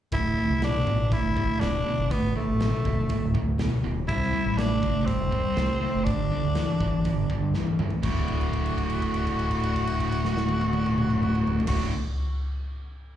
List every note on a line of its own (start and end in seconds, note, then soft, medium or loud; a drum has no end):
0.12 0.34 D1 medium
0.12 0.34 D2 medium
0.12 0.35 A2 medium
0.12 0.59 E4 medium
0.12 kick medium
0.12 open hi-hat soft
0.37 0.59 D2 medium
0.37 0.59 A2 medium
0.50 0.83 C2 medium
0.62 0.84 D2 medium
0.62 0.84 B2 medium
0.62 1.15 D4 medium
0.62 snare loud
0.62 open hi-hat soft
0.86 1.20 A1 medium
0.86 1.09 D2 medium
0.86 1.09 B2 medium
0.86 kick medium
1.11 1.33 D2 medium
1.11 1.34 A2 medium
1.11 1.62 E4 loud
1.11 kick loud
1.11 open hi-hat soft
1.24 1.46 G1 medium
1.37 1.59 D2 medium
1.37 1.59 A2 medium
1.37 kick medium
1.60 1.83 D1 medium
1.60 1.84 D2 medium
1.60 1.84 B2 medium
1.60 2.13 D4 medium
1.60 snare medium
1.60 open hi-hat soft
1.86 2.08 D2 medium
1.86 2.08 B2 medium
1.99 2.12 F#1 medium
2.11 2.33 G1 medium
2.11 2.33 D2 medium
2.11 2.33 A2 medium
2.11 2.36 B3 medium
2.11 kick medium
2.11 open hi-hat soft
2.35 2.58 D2 medium
2.35 2.58 A2 medium
2.35 3.31 A3 medium
2.48 2.70 A1 medium
2.60 2.82 D2 medium
2.60 2.82 B2 medium
2.60 snare loud
2.60 open hi-hat soft
2.85 3.07 D1 medium
2.85 3.07 D2 medium
2.85 3.07 B2 medium
2.85 kick medium
3.09 3.32 D2 medium
3.09 3.32 A2 medium
3.09 kick loud
3.09 open hi-hat soft
3.24 3.34 D1 medium
3.34 3.57 D2 medium
3.34 3.57 A2 medium
3.34 kick medium
3.48 3.69 D2 medium
3.58 3.81 D2 medium
3.58 3.81 B2 medium
3.58 snare loud
3.58 open hi-hat soft
3.83 4.11 D1 medium
3.83 4.06 D2 medium
3.83 4.06 B2 medium
4.07 4.31 C2 medium
4.07 4.30 C3 medium
4.07 4.30 G3 medium
4.07 4.59 E4 loud
4.07 kick medium
4.07 open hi-hat soft
4.22 snare soft
4.32 4.55 C3 medium
4.32 4.56 G3 medium
4.46 4.79 A1 medium
4.57 4.80 C3 medium
4.57 4.80 A3 medium
4.57 5.07 D4 medium
4.57 snare loud
4.57 open hi-hat soft
4.82 5.16 G1 medium
4.82 5.05 C3 medium
4.82 5.05 A3 medium
4.82 kick medium
5.06 5.29 C3 medium
5.06 5.30 G3 medium
5.06 6.06 C4 medium
5.06 kick loud
5.06 open hi-hat medium
5.20 5.42 E1 medium
5.32 5.54 C3 medium
5.32 5.55 G3 medium
5.32 kick medium
5.56 5.79 C2 medium
5.56 5.79 C3 medium
5.56 5.79 A3 medium
5.56 snare loud
5.56 open hi-hat soft
5.81 6.04 C3 medium
5.81 6.04 A3 medium
5.95 6.07 F#1 medium
6.04 6.29 G1 medium
6.04 6.28 G2 medium
6.04 6.28 D3 medium
6.04 7.53 D4 medium
6.04 kick loud
6.04 open hi-hat soft
6.30 6.53 G2 medium
6.30 6.53 D3 medium
6.44 6.65 D2 medium
6.55 6.78 G2 medium
6.55 6.78 E3 medium
6.55 snare loud
6.55 open hi-hat medium
6.80 7.02 G1 medium
6.80 7.02 G2 medium
6.80 7.03 E3 medium
6.80 kick medium
7.05 7.27 G2 medium
7.05 7.28 D3 medium
7.05 kick loud
7.05 open hi-hat soft
7.17 7.28 G1 medium
7.30 7.52 G2 medium
7.30 7.52 D3 medium
7.30 kick medium
7.42 7.64 G2 medium
7.54 7.76 G2 medium
7.54 7.76 E3 medium
7.54 snare soft
7.67 high tom medium
7.79 8.01 G2 medium
7.79 7.90 G2 medium
7.79 8.01 E3 medium
7.79 mid tom medium
7.90 floor tom medium
8.02 11.58 D1 medium
8.02 11.61 D2 medium
8.02 11.62 A2 medium
8.02 11.63 D3 loud
8.02 11.58 F#4 medium
8.02 kick loud
8.02 crash medium
8.28 kick medium
8.28 crash soft
8.41 crash soft
8.53 kick medium
8.53 crash soft
8.66 crash soft
8.78 kick medium
8.78 crash soft
8.90 crash soft
9.02 kick medium
9.02 crash soft
9.14 crash soft
9.27 kick medium
9.27 crash soft
9.39 crash soft
9.51 kick medium
9.51 crash soft
9.64 crash soft
9.76 kick medium
9.76 crash soft
9.87 crash medium
10.00 kick medium
10.00 crash medium
10.12 crash soft
10.25 snare medium
10.37 snare medium
10.49 high tom medium
10.61 high tom medium
10.73 high tom medium
10.86 mid tom medium
10.98 mid tom medium
11.10 mid tom medium
11.23 mid tom medium
11.35 mid tom medium
11.47 floor tom medium
11.60 floor tom loud
11.66 11.88 D1 medium
11.66 11.89 D2 medium
11.66 11.90 A2 loud
11.66 11.88 F#4 medium
11.66 kick loud
11.66 snare medium
11.66 crash loud
11.70 11.91 D3 loud